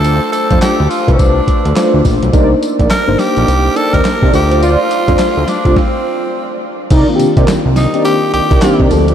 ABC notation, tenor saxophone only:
X:1
M:4/4
L:1/16
Q:"Swing 16ths" 1/4=105
K:Cdor
V:1 name="Tenor saxophone"
A2 A2 G2 F3/2 _D/2 =D6 z2 | z4 B2 G4 A B3 G2 | F6 D2 C6 z2 | z6 E2 G2 G4 z2 |]